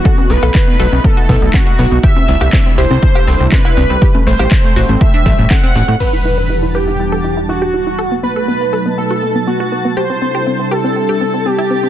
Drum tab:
CC |----------------|----------------|----------------|x---------------|
HH |xxoxxxoxxxoxxxox|xxoxxxoxxxoxxxox|xxoxxxoxxxoxxxox|----------------|
CB |---x------------|---x-----x---x--|---x------------|----------------|
CP |----x-------x---|----x-------x---|----x-------x---|----------------|
CG |-o-----o----o---|-o-----o----o---|-o-----o----o---|----------------|
BD |o---o---o-o-o---|o---o---o---o---|o---o---o-o-o---|----------------|

CC |----------------|----------------|
HH |----------------|----------------|
CB |----------------|----------------|
CP |----------------|----------------|
CG |----------------|----------------|
BD |----------------|----------------|